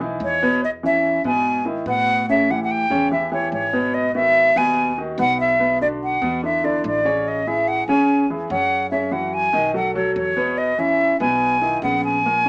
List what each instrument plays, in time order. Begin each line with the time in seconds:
Already playing: upright bass B1
0.00 grand piano E3 D#4 E4
0.20 upright bass E2, flute C#5
0.42 grand piano B2 B3 B4
0.65 flute D#5
0.83 grand piano E3 C#4 E4, flute E5
1.24 upright bass G#2, grand piano B2 B3 B4, flute G#5
1.65 grand piano D#3 D#4 E4
1.86 upright bass A2, grand piano B2 B3 B4, flute F#5
2.29 grand piano C#3 C#4 C#5, flute E5
2.50 grand piano E3 E4 G4, flute F#5
2.64 flute F#5
2.71 flute G5
2.90 upright bass E2, grand piano C#3 C#4 C#5
3.11 grand piano E3 E4 G4, flute E5
3.32 grand piano E3 E4 G4, flute C#5
3.52 upright bass G#1, flute C#5
3.73 grand piano B2 B3 B4
3.94 flute D#5
4.15 grand piano D#3 B3 F#4, flute E5
4.56 upright bass D#2, grand piano B2 B3 B4, flute G#5
4.98 grand piano D#3 D#4 F#4
5.18 upright bass B1, grand piano B2 B3 B4, flute F#5
5.40 flute E5
5.60 grand piano B2 B3 B4
5.81 grand piano D3 D4 F#4, flute D5
6.04 flute F#5
6.22 upright bass E2, grand piano B2 B3 B4
6.43 grand piano D3 D4 E4, flute E5
6.64 grand piano D3 D4 E4, flute D5
6.84 upright bass A1, flute D5
7.05 grand piano C#3 C#4 C#5
7.28 flute D#5
7.47 grand piano E3 E4 G#4, flute E5
7.68 flute F#5
7.88 upright bass E2, grand piano C#3 C#4 C#5, flute G#5
8.30 grand piano E3 E4 G#4
8.50 upright bass F#2, grand piano C#3 C#4 C#5, flute F#5
8.91 grand piano C#3 C#4 C#5, flute E5
9.11 grand piano E3 E4 F#4, flute F#5
9.34 flute G#5
9.53 upright bass B1, grand piano D#3 D#4 D#5
9.74 grand piano F#3 F#4 A4, flute F#5
9.95 grand piano F#3 F#4 A4, flute C#5
10.16 upright bass E2, flute C#5
10.37 grand piano B2 B3 B4
10.58 flute D#5
10.78 grand piano E3 C#4 E4, flute E5
11.20 upright bass B1, grand piano B2 B3 B4, flute G#5
11.62 grand piano D#3 D#4 E4
11.82 upright bass A#1, grand piano C#3 B3 B4, flute F#5
12.04 flute G#5
12.25 grand piano A#2 A#3 A#4
12.45 grand piano C#3 C#4